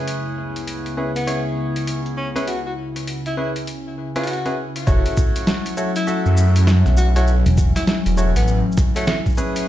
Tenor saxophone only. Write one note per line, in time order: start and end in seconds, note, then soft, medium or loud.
1.16 1.41 B3 medium
2.17 2.29 C#4 medium
2.36 2.43 C#4 medium
2.47 2.59 F#4 medium
2.66 2.73 F#4 medium
3.26 3.34 E4 medium
3.38 3.50 E4 medium
4.16 4.57 F#4 medium
5.96 6.21 E4 medium
6.97 7.09 F#4 medium
7.16 7.23 F#4 medium
7.76 7.83 E4 medium
7.87 7.99 E4 medium
8.36 8.61 B3 medium
8.96 9.03 A3 medium
9.07 9.19 A3 medium